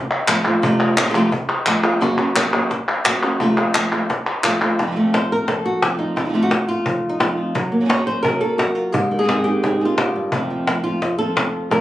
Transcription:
0.28 F3 A3 C4 F4, cajon bass, cajon slap, clap
0.46 F3 A3 C4 F4
0.62 F2 C3 F3 A3 C4 F4, cajon bass
0.97 C3 F3 A3 C4 F4, cajon slap, clap
1.02 C3 F3 C4 F4
1.06 C3 A3 C4 F4
1.10 F3 A3 C4 F4
1.14 F2 C3 F3 A3 C4 F4, clap
1.32 muted nylon-string guitar stroke, cajon bass
1.66 F3 A3 C4 F4, cajon slap, clap
1.83 F3 A3 C4 F4, clap
2.00 F#2 C#3 F#3 A#3 C#4 F#4, cajon bass, cajon slap
2.18 F#3 A#3 C#4 F#4, cajon slap
2.36 F#3 A#3 C#4 F#4, cajon slap, clap
2.53 F#3 A#3 C#4 F#4, clap
2.70 muted nylon-string guitar stroke, cajon bass, cajon slap
3.05 F#3 A#3 C#4 F#4, cajon slap, clap
3.23 F#3 A#3 C#4 F#4, clap
3.40 F2 C3 F3 A3 C4 F4, cajon bass, cajon slap
3.57 F3 A3 C4 F4, cajon slap
3.74 F3 A3 C4 F4, cajon slap, clap
3.92 F3 A3 C4 F4, clap
4.09 muted nylon-string guitar stroke, cajon bass, cajon slap
4.43 F3 A3 C4 F4, cajon slap, clap
4.61 F3 A3 C4 F4, clap
4.78 F2 C3 F3 A3 C4 F4, cajon bass, cajon slap
4.83 F3 A3 C4 F4
4.87 C3 F3 A3 C4 F4
4.91 C3 F3 A3 C4 F4
4.96 F2 C3 F3 A3 C4 F4, cajon slap
5.13 F3 A3 C4 F4 C5, cajon slap
5.32 A#4
5.48 A4, muted nylon-string guitar stroke, cajon bass, cajon slap
5.66 F#4
5.82 F3 A3 C4 F4, cajon bass, cajon slap
5.99 F3 A3 C4 D#4 F4
6.16 F2 C3 F3 A3 C4 F4, cajon bass, cajon slap
6.25 C3 F3 A3 C4 F4
6.29 C3 F3 A3 C4 F4
6.33 F2 C3 F3 A3 C4 F4, cajon slap
6.43 F#4
6.50 F4, cajon slap
6.68 F4
6.85 muted nylon-string guitar stroke, cajon bass
7.09 D#4
7.20 F3 A3 C4 F4, cajon bass, cajon slap
7.37 F3 A3 C4 F4
7.55 F#3, muted nylon-string guitar stroke, cajon bass
7.72 A#3
7.80 C#3 F#3 A#3 C#4 F#4
7.85 C#3 F#3 A#3 C#4 F#4
7.89 F#2 C#3 F#3 A#3 C#4 F#4 C#5, cajon slap
8.07 F#3 A#3 C#4 F#4 C5
8.23 F#2 C#3 F#3 A#3 C#4 F#4 A#4, cajon bass
8.41 F#3 A#3 C#4 F#4 A4
8.58 F#4, muted nylon-string guitar stroke, cajon slap
8.75 F4
8.92 G#2 G4, muted nylon-string guitar stroke, cajon bass
9.11 D#3
9.19 D#3 G#3 C4 D#4 G#4
9.24 D#3 G#3 C4 D#4 G#4
9.28 G#2 D#3 G#3 C4 D#4 G#4, cajon slap
9.44 G#3 C4 D#4 G4 G#4
9.63 G#2 D#3 G#3 C4 D#4 G#4, cajon bass, cajon slap
9.80 G#3 C4 D#4 G#4
9.85 F4
9.98 G#2 G4, muted nylon-string guitar stroke, cajon slap
10.15 G2
10.32 F2 C3 F3 A3 C4 F4, cajon bass
10.50 F3
10.66 F3 A3 C4 F4, cajon slap
10.84 F3 A3 C4 F4
11.02 muted nylon-string guitar stroke, cajon bass, cajon slap
11.18 F3 A3 C4 F4 A4
11.36 F3 A3 C4 F4, cajon bass, cajon slap
11.70 F2 C3 F3 A3 C4 F4 A#4, cajon bass, cajon slap

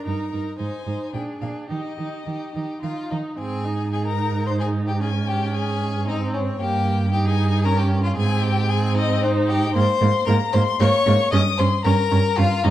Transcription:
0.05 G2 D#4 A#4 A#5
0.31 G2 D#4 A#4
0.59 G#2 D#4 C5 G#5
0.85 G#2 D#4 C5
1.12 A#2 D4 G#4 G5
1.41 A#2 D4 G#4 F5
1.69 D#3 D#4 G4 D#5
1.97 D#3 D#4 G4
2.25 D#3 D#4 G4
2.54 D#3 D#4 G4
2.81 D#3 D#4 F4 F5
3.10 D#3 D#4 D#5
3.38 G#2 C4 G#4 G#5
3.65 D#4
3.92 D#4 G#4 G#5
4.06 A#4 A#5
4.47 C5 C6
4.60 G#4 G#5
4.87 G4 G5
5.00 C#4 G#4 G#5
5.27 G4 G5
5.53 G#4 G#5
6.07 C4 D#4 D#5
6.34 C#4 C#5
6.60 G2 A#3 G4 G5
7.12 D#4 G4 G5
7.26 G#4 G#5
7.64 C#4 A#4 A#5
7.78 G4 G5
8.03 F4 F5
8.16 G#2 C4 G#4 G#5
8.43 G4 G5
8.69 C4 G#4 G#5
8.95 D#4 D#5
9.22 C4 D#4 C5
9.48 G4 G5
9.74 G#2 A#3 C5 C6
10.01 G#2 A#3
10.26 G#2 A#3 A#4 A#5
10.53 G#2 A#3 C5 C6
10.80 G#2 A#3 C#5 C#6
11.06 G#2 A#3
11.31 G2 C#4 D#5 D#6
11.58 G2 C#4 C5 C6
11.84 G2 C#4 A#4 A#5
12.11 G2 C#4
12.37 G2 C#4 F4 F5
12.64 G2 C#4 D#4 D#5

